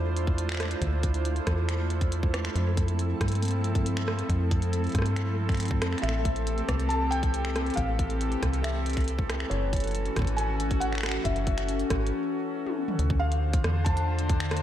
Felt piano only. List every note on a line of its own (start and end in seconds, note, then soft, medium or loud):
6.02 6.64 E5 loud
6.89 7.12 A5 loud
7.11 7.79 G5 loud
7.75 8.66 F5 loud
8.63 9.04 E5 medium
9.50 10.34 C#5 medium
10.37 10.82 G#5 loud
10.80 11.21 F#5 loud
11.24 12.07 E5 medium
13.20 13.81 F5 loud
13.84 14.62 A5 loud